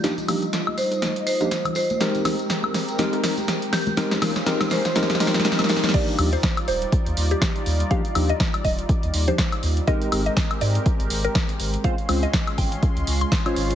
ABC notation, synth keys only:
X:1
M:4/4
L:1/16
Q:"Swing 16ths" 1/4=122
K:Eb
V:1 name="Synth keys"
[F,B,DEG] z [F,B,DEG] z8 [F,B,DEG] z4 | [A,CEGB]2 [A,CEG] z4 z [A,CEGB]2 [A,CEGB] z4 z | [A,CEGB]2 [A,CEGB] z [A,CEGB]2 [A,CEGB] z [A,CEGB]2 [A,CEGB]2 [A,CEGB]2 [A,CEGB]2 | [F,B,DEG]2 [F,B,DEG] z12 z |
[F,B,DEG] z [F,B,DEG] z8 [F,B,DEG] z4 | [A,CEGB]2 [A,CEGB] z12 z | [A,C_DFc] z [A,CDFc] z8 z2 [A,DFc_d]3 |]